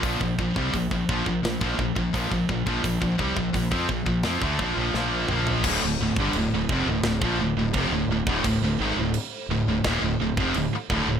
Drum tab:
CC |----------------|----------------|x---x---x---x---|x---x---x---x---|
HH |o---o---o---o---|o---o---o-------|----------------|----------------|
SD |--------o-------|--------o---o---|--------o-------|--------o-------|
T2 |----------------|--------------o-|----------------|----------------|
FT |----------------|---------------o|----------------|----------------|
BD |oooooooo-ooooooo|oooooooo-oo-----|o--o--o--o--o--o|o-------o--o--o-|